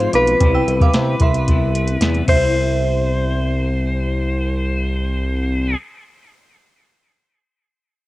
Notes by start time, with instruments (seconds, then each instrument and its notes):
Already playing: clean electric guitar F3 G#3 C4 F4, electric slide guitar C5
0.00 closed hi-hat
0.13 analog synth bass B1, electric slide guitar B4, synth bell F5 D6, closed hi-hat
0.28 closed hi-hat
0.39 analog synth bass C2, clean electric guitar C3 G3 B3, kick, closed hi-hat
0.45 clean electric guitar E4
0.55 synth bell G5 E6
0.67 analog synth bass C2, closed hi-hat
0.81 synth bell F5 D6, kick, closed hi-hat
0.94 analog synth bass C3, snare, closed hi-hat
1.20 analog synth bass C2, synth bell E5 C6, kick, closed hi-hat
1.34 closed hi-hat
1.47 clean electric guitar C3 G3 B3 E4, kick, closed hi-hat
1.75 closed hi-hat
1.88 closed hi-hat
2.01 analog synth bass E2, clean electric guitar C3 G3 B3 E4, snare, closed hi-hat
2.15 closed hi-hat
2.25 analog synth bass C2, clean electric guitar C3, kick, crash
2.29 clean electric guitar G3, electric slide guitar C5, synth bell E5
2.36 clean electric guitar E4